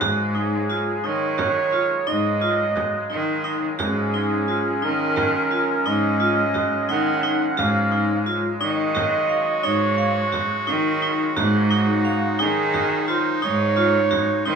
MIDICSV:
0, 0, Header, 1, 7, 480
1, 0, Start_track
1, 0, Tempo, 688073
1, 8, Time_signature, 11, 3, 24, 8
1, 10152, End_track
2, 0, Start_track
2, 0, Title_t, "Flugelhorn"
2, 0, Program_c, 0, 56
2, 8, Note_on_c, 0, 68, 92
2, 733, Note_on_c, 0, 73, 119
2, 744, Note_off_c, 0, 68, 0
2, 1448, Note_on_c, 0, 75, 110
2, 1459, Note_off_c, 0, 73, 0
2, 2409, Note_off_c, 0, 75, 0
2, 2651, Note_on_c, 0, 68, 89
2, 3379, Note_on_c, 0, 70, 98
2, 3389, Note_off_c, 0, 68, 0
2, 4097, Note_on_c, 0, 75, 112
2, 4107, Note_off_c, 0, 70, 0
2, 4813, Note_off_c, 0, 75, 0
2, 4816, Note_on_c, 0, 78, 106
2, 5289, Note_on_c, 0, 77, 106
2, 5299, Note_off_c, 0, 78, 0
2, 5769, Note_off_c, 0, 77, 0
2, 6001, Note_on_c, 0, 75, 125
2, 6727, Note_on_c, 0, 73, 108
2, 6737, Note_off_c, 0, 75, 0
2, 7447, Note_off_c, 0, 73, 0
2, 7928, Note_on_c, 0, 66, 106
2, 8652, Note_on_c, 0, 68, 121
2, 8663, Note_off_c, 0, 66, 0
2, 9123, Note_off_c, 0, 68, 0
2, 9127, Note_on_c, 0, 72, 98
2, 9371, Note_on_c, 0, 73, 123
2, 9382, Note_off_c, 0, 72, 0
2, 10084, Note_off_c, 0, 73, 0
2, 10088, Note_on_c, 0, 72, 105
2, 10152, Note_off_c, 0, 72, 0
2, 10152, End_track
3, 0, Start_track
3, 0, Title_t, "Vibraphone"
3, 0, Program_c, 1, 11
3, 6, Note_on_c, 1, 66, 95
3, 144, Note_off_c, 1, 66, 0
3, 242, Note_on_c, 1, 63, 72
3, 381, Note_off_c, 1, 63, 0
3, 486, Note_on_c, 1, 65, 71
3, 624, Note_off_c, 1, 65, 0
3, 724, Note_on_c, 1, 63, 80
3, 863, Note_off_c, 1, 63, 0
3, 963, Note_on_c, 1, 66, 78
3, 1102, Note_off_c, 1, 66, 0
3, 1203, Note_on_c, 1, 65, 66
3, 1342, Note_off_c, 1, 65, 0
3, 1443, Note_on_c, 1, 63, 90
3, 1582, Note_off_c, 1, 63, 0
3, 1684, Note_on_c, 1, 65, 74
3, 1823, Note_off_c, 1, 65, 0
3, 1923, Note_on_c, 1, 66, 74
3, 2062, Note_off_c, 1, 66, 0
3, 2161, Note_on_c, 1, 63, 73
3, 2301, Note_off_c, 1, 63, 0
3, 2401, Note_on_c, 1, 63, 77
3, 2541, Note_off_c, 1, 63, 0
3, 2642, Note_on_c, 1, 66, 91
3, 2782, Note_off_c, 1, 66, 0
3, 2886, Note_on_c, 1, 63, 78
3, 3024, Note_off_c, 1, 63, 0
3, 3125, Note_on_c, 1, 65, 80
3, 3264, Note_off_c, 1, 65, 0
3, 3364, Note_on_c, 1, 63, 88
3, 3503, Note_off_c, 1, 63, 0
3, 3601, Note_on_c, 1, 66, 74
3, 3741, Note_off_c, 1, 66, 0
3, 3844, Note_on_c, 1, 65, 69
3, 3983, Note_off_c, 1, 65, 0
3, 4086, Note_on_c, 1, 63, 79
3, 4224, Note_off_c, 1, 63, 0
3, 4325, Note_on_c, 1, 65, 86
3, 4463, Note_off_c, 1, 65, 0
3, 4563, Note_on_c, 1, 66, 79
3, 4702, Note_off_c, 1, 66, 0
3, 4805, Note_on_c, 1, 63, 85
3, 4943, Note_off_c, 1, 63, 0
3, 5045, Note_on_c, 1, 63, 89
3, 5183, Note_off_c, 1, 63, 0
3, 5282, Note_on_c, 1, 66, 93
3, 5421, Note_off_c, 1, 66, 0
3, 5523, Note_on_c, 1, 63, 77
3, 5662, Note_off_c, 1, 63, 0
3, 5765, Note_on_c, 1, 65, 81
3, 5903, Note_off_c, 1, 65, 0
3, 6004, Note_on_c, 1, 63, 91
3, 6143, Note_off_c, 1, 63, 0
3, 6241, Note_on_c, 1, 66, 77
3, 6380, Note_off_c, 1, 66, 0
3, 6483, Note_on_c, 1, 77, 68
3, 6622, Note_off_c, 1, 77, 0
3, 6722, Note_on_c, 1, 63, 92
3, 6861, Note_off_c, 1, 63, 0
3, 6962, Note_on_c, 1, 77, 83
3, 7101, Note_off_c, 1, 77, 0
3, 7203, Note_on_c, 1, 66, 80
3, 7341, Note_off_c, 1, 66, 0
3, 7444, Note_on_c, 1, 63, 90
3, 7582, Note_off_c, 1, 63, 0
3, 7688, Note_on_c, 1, 63, 85
3, 7825, Note_off_c, 1, 63, 0
3, 7929, Note_on_c, 1, 66, 102
3, 8066, Note_off_c, 1, 66, 0
3, 8167, Note_on_c, 1, 63, 86
3, 8304, Note_off_c, 1, 63, 0
3, 8405, Note_on_c, 1, 77, 88
3, 8543, Note_off_c, 1, 77, 0
3, 8644, Note_on_c, 1, 63, 94
3, 8782, Note_off_c, 1, 63, 0
3, 8885, Note_on_c, 1, 66, 75
3, 9023, Note_off_c, 1, 66, 0
3, 9125, Note_on_c, 1, 65, 78
3, 9262, Note_off_c, 1, 65, 0
3, 9363, Note_on_c, 1, 63, 90
3, 9501, Note_off_c, 1, 63, 0
3, 9603, Note_on_c, 1, 65, 93
3, 9741, Note_off_c, 1, 65, 0
3, 9843, Note_on_c, 1, 66, 87
3, 9981, Note_off_c, 1, 66, 0
3, 10084, Note_on_c, 1, 63, 93
3, 10152, Note_off_c, 1, 63, 0
3, 10152, End_track
4, 0, Start_track
4, 0, Title_t, "Clarinet"
4, 0, Program_c, 2, 71
4, 2647, Note_on_c, 2, 61, 98
4, 5792, Note_off_c, 2, 61, 0
4, 6009, Note_on_c, 2, 66, 117
4, 7926, Note_on_c, 2, 63, 113
4, 7936, Note_off_c, 2, 66, 0
4, 10152, Note_off_c, 2, 63, 0
4, 10152, End_track
5, 0, Start_track
5, 0, Title_t, "Woodwind section"
5, 0, Program_c, 3, 71
5, 0, Note_on_c, 3, 49, 68
5, 0, Note_on_c, 3, 54, 82
5, 0, Note_on_c, 3, 56, 71
5, 10152, Note_off_c, 3, 49, 0
5, 10152, Note_off_c, 3, 54, 0
5, 10152, Note_off_c, 3, 56, 0
5, 10152, End_track
6, 0, Start_track
6, 0, Title_t, "Cello"
6, 0, Program_c, 4, 42
6, 8, Note_on_c, 4, 44, 97
6, 571, Note_off_c, 4, 44, 0
6, 730, Note_on_c, 4, 51, 91
6, 1292, Note_off_c, 4, 51, 0
6, 1449, Note_on_c, 4, 44, 88
6, 2012, Note_off_c, 4, 44, 0
6, 2170, Note_on_c, 4, 51, 97
6, 2545, Note_off_c, 4, 51, 0
6, 2650, Note_on_c, 4, 44, 94
6, 3213, Note_off_c, 4, 44, 0
6, 3371, Note_on_c, 4, 51, 97
6, 3933, Note_off_c, 4, 51, 0
6, 4090, Note_on_c, 4, 44, 98
6, 4652, Note_off_c, 4, 44, 0
6, 4806, Note_on_c, 4, 51, 97
6, 5182, Note_off_c, 4, 51, 0
6, 5284, Note_on_c, 4, 44, 108
6, 5848, Note_off_c, 4, 44, 0
6, 6011, Note_on_c, 4, 51, 92
6, 6572, Note_off_c, 4, 51, 0
6, 6726, Note_on_c, 4, 44, 98
6, 7289, Note_off_c, 4, 44, 0
6, 7447, Note_on_c, 4, 51, 102
6, 7822, Note_off_c, 4, 51, 0
6, 7929, Note_on_c, 4, 44, 110
6, 8491, Note_off_c, 4, 44, 0
6, 8647, Note_on_c, 4, 51, 105
6, 9209, Note_off_c, 4, 51, 0
6, 9371, Note_on_c, 4, 44, 101
6, 9932, Note_off_c, 4, 44, 0
6, 10086, Note_on_c, 4, 51, 104
6, 10152, Note_off_c, 4, 51, 0
6, 10152, End_track
7, 0, Start_track
7, 0, Title_t, "Frame drum"
7, 9, Note_on_c, 9, 64, 78
7, 79, Note_off_c, 9, 64, 0
7, 967, Note_on_c, 9, 64, 79
7, 1037, Note_off_c, 9, 64, 0
7, 1209, Note_on_c, 9, 64, 22
7, 1278, Note_off_c, 9, 64, 0
7, 1451, Note_on_c, 9, 64, 21
7, 1521, Note_off_c, 9, 64, 0
7, 1930, Note_on_c, 9, 64, 72
7, 1999, Note_off_c, 9, 64, 0
7, 2647, Note_on_c, 9, 64, 79
7, 2717, Note_off_c, 9, 64, 0
7, 3608, Note_on_c, 9, 64, 75
7, 3677, Note_off_c, 9, 64, 0
7, 3849, Note_on_c, 9, 64, 23
7, 3919, Note_off_c, 9, 64, 0
7, 4570, Note_on_c, 9, 64, 64
7, 4640, Note_off_c, 9, 64, 0
7, 5294, Note_on_c, 9, 64, 75
7, 5363, Note_off_c, 9, 64, 0
7, 6253, Note_on_c, 9, 64, 76
7, 6322, Note_off_c, 9, 64, 0
7, 6493, Note_on_c, 9, 64, 22
7, 6562, Note_off_c, 9, 64, 0
7, 7210, Note_on_c, 9, 64, 68
7, 7279, Note_off_c, 9, 64, 0
7, 7930, Note_on_c, 9, 64, 73
7, 8000, Note_off_c, 9, 64, 0
7, 8889, Note_on_c, 9, 64, 68
7, 8958, Note_off_c, 9, 64, 0
7, 9132, Note_on_c, 9, 64, 21
7, 9202, Note_off_c, 9, 64, 0
7, 9853, Note_on_c, 9, 64, 65
7, 9922, Note_off_c, 9, 64, 0
7, 10152, End_track
0, 0, End_of_file